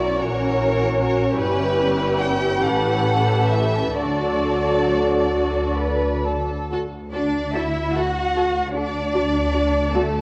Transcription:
Already playing: B1 F#3 C#4 E4 F#4 A#4 D5
0.21 A#1 E3 F#4 A#4 C#5
0.61 E3
1.01 F#3
1.39 G1 G3 E4 G4 B4
2.20 G5
2.63 A1 E3 A4 F#5
3.51 E5
3.95 D2 F#3 D4 F#4 A4 D5
5.32 F#4
5.79 B4
6.27 A4
6.71 D2 F#4 A4
7.13 D4 F#4 A4 D5
7.53 E4 F#4 A4 E5
7.94 D2 F#4 A4 F#5
8.35 F#4 A4
8.74 D4 F#4 A4 D5
9.13 D2 F#4 D5
9.54 F#4 D5
9.93 A3 F#4 A4 D5

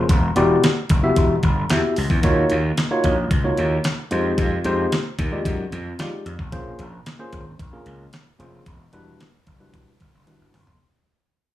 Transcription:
0.09 E1, kick, closed hi-hat
0.36 E1 B3 E4 F#4 G4 D5, closed hi-hat
0.64 snare, clap, closed hi-hat
0.89 F#1, kick, closed hi-hat
1.03 B3 E4 F#4 G4 E5
1.16 E1, kick, closed hi-hat
1.43 G1, kick, closed hi-hat
1.70 E2 B3 E4 F#4 G4 E5, snare, clap, closed hi-hat
1.96 C#2, open hi-hat
2.10 E2, kick
2.23 D#2 A#3 D#4 F4 F#4 C#5, kick, closed hi-hat
2.50 D#2, closed hi-hat
2.77 snare, clap, closed hi-hat
2.91 A#3 D#4 F4 F#4 C#5
3.04 A#1, kick, closed hi-hat
3.31 C#2, kick, closed hi-hat
3.44 A#3 D#4 F4 F#4 C#5
3.57 D#2, closed hi-hat
3.84 snare, clap, closed hi-hat
4.11 F2 G#3 D#4 F4 G4 C5, closed hi-hat
4.38 F2, kick, closed hi-hat
4.64 F2 G#3 D#4 F4 G4 C5, closed hi-hat
4.92 snare, clap, closed hi-hat
5.19 D#2, kick, closed hi-hat
5.31 G#3 D#4 F4 G4 D5
5.45 F#2, kick, closed hi-hat
5.72 F2, closed hi-hat
5.99 F3 G#3 D#4 F4 G4 D5, snare, clap, closed hi-hat
6.26 F2, closed hi-hat
6.39 B1, kick
6.52 A#1 A#3 C#4 F4 G#4 C5, kick, closed hi-hat
6.79 A#1, closed hi-hat
7.06 snare, clap, closed hi-hat
7.19 A#3 C#4 F4 G#4 C5
7.33 G#1, kick, closed hi-hat
7.59 A#1, kick, closed hi-hat
7.73 A#3 C#4 F4 G#4 A#4
7.86 C#2, closed hi-hat
8.13 snare, clap, closed hi-hat
8.39 F1 A#3 C#4 F4 G#4 C5, closed hi-hat
8.66 E1, kick, closed hi-hat
8.93 E1 G3 D4 E4 F#4 B4, closed hi-hat
9.20 snare, clap, closed hi-hat
9.47 F#1, kick, closed hi-hat
9.59 G3 D4 E4 F#4 B4
9.74 E1, kick, closed hi-hat
10.00 G1, kick, closed hi-hat
10.14 F#1
10.27 G3 D4 E4 F#4 B4, closed hi-hat, high tom
10.41 G1
10.54 F#1, mid tom, open hi-hat
10.67 F1, floor tom

